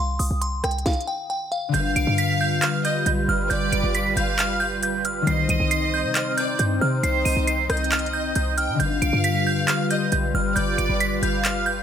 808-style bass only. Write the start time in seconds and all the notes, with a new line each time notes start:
Already playing: C2
0.20 C2
0.31 C2
0.64 C2
1.74 G1
1.96 B1
2.07 G2
3.06 B1
3.28 G1
3.51 G1
3.73 G1
3.84 G1
4.06 G#1
4.17 G1
5.27 C2
5.49 C2
5.60 C2
6.04 C3
6.59 G2
6.81 C3
7.03 C2
7.26 C2
7.37 C2
7.70 C2
8.36 C2
8.69 C3
8.80 G1
9.02 B1
9.13 G2
10.12 B1
10.34 G1
10.56 G1
10.78 G1
10.90 G1
11.12 G#1
11.23 G1